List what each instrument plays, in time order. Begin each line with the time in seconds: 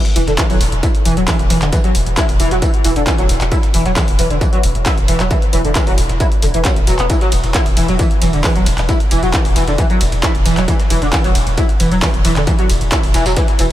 0.05 snare, closed hi-hat
0.15 sub bass E1, analog synth lead E3, open hi-hat, tambourine
0.27 sub bass E1, analog synth lead D3, snare, closed hi-hat
0.38 analog synth lead E3, kick, snare, clap, closed hi-hat, tambourine
0.50 sub bass E1, analog synth lead F#3, open hi-hat
0.60 sub bass E1, open hi-hat, tambourine
0.72 sub bass E1, closed hi-hat
0.83 analog synth lead E4, kick, closed hi-hat, tambourine
0.95 closed hi-hat
1.05 sub bass E1, analog synth lead E3, open hi-hat, tambourine
1.17 sub bass E1, analog synth lead F#3, closed hi-hat
1.28 analog synth lead E3, kick, snare, clap, closed hi-hat, open hi-hat
1.39 sub bass E1, closed hi-hat
1.50 sub bass E1, analog synth lead E3, snare, open hi-hat, tambourine
1.62 sub bass E1, analog synth lead D3, snare, clap, closed hi-hat
1.72 analog synth lead E3, kick, closed hi-hat, tambourine
1.84 analog synth lead F#3, closed hi-hat
1.95 sub bass E1, open hi-hat, tambourine
2.06 sub bass E1, closed hi-hat
2.17 analog synth lead E4, kick, snare, clap, closed hi-hat, tambourine
2.29 sub bass E1, open hi-hat
2.40 sub bass E1, analog synth lead E3, open hi-hat, tambourine
2.51 sub bass E1, analog synth lead F#3, snare, closed hi-hat
2.62 analog synth lead E3, kick, closed hi-hat, tambourine
2.74 closed hi-hat
2.84 sub bass E1, analog synth lead E3, snare, open hi-hat, tambourine
2.96 sub bass E1, analog synth lead D3, closed hi-hat
3.07 analog synth lead E3, kick, snare, clap, closed hi-hat, tambourine
3.18 sub bass E1, analog synth lead F#3, closed hi-hat
3.29 sub bass E1, open hi-hat, tambourine
3.41 sub bass E1, clap, closed hi-hat
3.51 analog synth lead E4, kick, closed hi-hat, tambourine
3.63 snare, closed hi-hat
3.74 sub bass E1, analog synth lead E3, open hi-hat, tambourine
3.86 sub bass E1, analog synth lead F#3, snare, closed hi-hat
3.96 analog synth lead E3, kick, snare, clap, closed hi-hat, tambourine
4.08 sub bass E1, open hi-hat
4.19 sub bass E1, analog synth lead E3, open hi-hat, tambourine
4.30 sub bass E1, analog synth lead D3, closed hi-hat
4.41 analog synth lead E3, kick, closed hi-hat, tambourine
4.53 analog synth lead F#3, closed hi-hat
4.63 sub bass E1, open hi-hat, tambourine
4.75 sub bass E1, closed hi-hat
4.86 analog synth lead E4, kick, snare, clap, closed hi-hat, open hi-hat
4.98 sub bass E1, closed hi-hat
5.08 sub bass E1, analog synth lead E3, snare, open hi-hat, tambourine
5.20 sub bass E1, analog synth lead F#3, snare, clap, closed hi-hat
5.31 analog synth lead E3, kick, closed hi-hat, tambourine
5.42 closed hi-hat
5.53 sub bass E1, analog synth lead E3, open hi-hat, tambourine
5.65 sub bass E1, analog synth lead D3, closed hi-hat
5.75 analog synth lead E3, kick, snare, clap, closed hi-hat, tambourine
5.87 sub bass E1, analog synth lead F#3, open hi-hat
5.98 sub bass E1, open hi-hat, tambourine
6.09 sub bass E1, snare, closed hi-hat
6.20 analog synth lead E4, kick, closed hi-hat, tambourine
6.32 closed hi-hat
6.42 sub bass E1, analog synth lead D3, snare, open hi-hat, tambourine
6.54 sub bass E1, analog synth lead E3, closed hi-hat
6.65 analog synth lead F#3, kick, snare, clap, closed hi-hat, tambourine
6.76 sub bass E1, closed hi-hat
6.87 sub bass E1, analog synth lead F#3, open hi-hat, tambourine
6.99 sub bass E1, analog synth lead B3, clap, closed hi-hat
7.10 analog synth lead E3, kick, closed hi-hat, ride, tambourine
7.21 analog synth lead F#3, snare, closed hi-hat
7.32 sub bass E1, open hi-hat, ride, tambourine
7.44 sub bass E1, snare, closed hi-hat
7.54 analog synth lead E4, kick, snare, clap, closed hi-hat, ride, tambourine
7.66 sub bass E1, open hi-hat
7.77 sub bass E1, analog synth lead E3, open hi-hat, ride, tambourine
7.88 sub bass E1, analog synth lead F#3, closed hi-hat
7.99 analog synth lead E3, kick, closed hi-hat, ride, tambourine
8.11 closed hi-hat
8.21 sub bass E1, analog synth lead E3, open hi-hat, ride, tambourine
8.33 sub bass E1, analog synth lead D3, closed hi-hat
8.44 analog synth lead E3, kick, snare, clap, closed hi-hat, open hi-hat, ride
8.55 sub bass E1, analog synth lead F#3, closed hi-hat
8.66 sub bass E1, snare, open hi-hat, ride, tambourine
8.78 sub bass E1, snare, clap, closed hi-hat
8.89 analog synth lead E4, kick, closed hi-hat, ride, tambourine
9.00 closed hi-hat
9.11 sub bass E1, analog synth lead E3, open hi-hat, ride, tambourine
9.23 sub bass E1, analog synth lead F#3, closed hi-hat
9.34 analog synth lead E3, kick, snare, clap, closed hi-hat, ride, tambourine
9.45 sub bass E1, open hi-hat
9.56 sub bass E1, analog synth lead E3, open hi-hat, ride, tambourine
9.67 sub bass E1, analog synth lead D3, snare, closed hi-hat
9.78 analog synth lead E3, kick, closed hi-hat, ride, tambourine
9.90 analog synth lead F#3, closed hi-hat
10.01 sub bass E1, snare, open hi-hat, ride, tambourine
10.12 sub bass E1, closed hi-hat
10.23 analog synth lead E4, kick, snare, clap, closed hi-hat, ride, tambourine
10.35 sub bass E1, closed hi-hat
10.45 sub bass E1, analog synth lead E3, open hi-hat, ride, tambourine
10.57 sub bass E1, analog synth lead F#3, clap, closed hi-hat
10.68 analog synth lead E3, kick, closed hi-hat, ride, tambourine
10.79 snare, closed hi-hat
10.90 sub bass E1, analog synth lead E3, open hi-hat, ride, tambourine
11.02 sub bass E1, analog synth lead D3, snare, closed hi-hat
11.13 analog synth lead E3, kick, snare, clap, closed hi-hat, ride, tambourine
11.24 sub bass E1, analog synth lead F#3, open hi-hat
11.35 sub bass E1, open hi-hat, ride, tambourine
11.47 sub bass E1, closed hi-hat
11.57 analog synth lead E4, kick, closed hi-hat, ride, tambourine
11.69 closed hi-hat
11.80 sub bass E1, analog synth lead E3, open hi-hat, ride, tambourine
11.91 sub bass E1, analog synth lead F#3, closed hi-hat
12.02 analog synth lead E3, kick, snare, clap, closed hi-hat, open hi-hat, ride
12.14 sub bass E1, closed hi-hat
12.25 sub bass E1, analog synth lead E3, snare, open hi-hat, ride, tambourine
12.36 sub bass E1, analog synth lead D3, snare, clap, closed hi-hat
12.47 analog synth lead E3, kick, closed hi-hat, ride, tambourine
12.59 analog synth lead F#3, closed hi-hat
12.70 sub bass E1, open hi-hat, ride, tambourine
12.81 sub bass E1, closed hi-hat
12.92 analog synth lead E4, kick, snare, clap, closed hi-hat, ride, tambourine
13.03 sub bass E1, open hi-hat
13.14 sub bass E1, analog synth lead E3, snare, open hi-hat, ride, tambourine
13.26 sub bass E1, analog synth lead F#3, snare, closed hi-hat, tambourine
13.36 analog synth lead E3, kick, snare, closed hi-hat, ride, tambourine
13.48 snare, closed hi-hat
13.59 sub bass E1, analog synth lead E3, snare, open hi-hat, ride, tambourine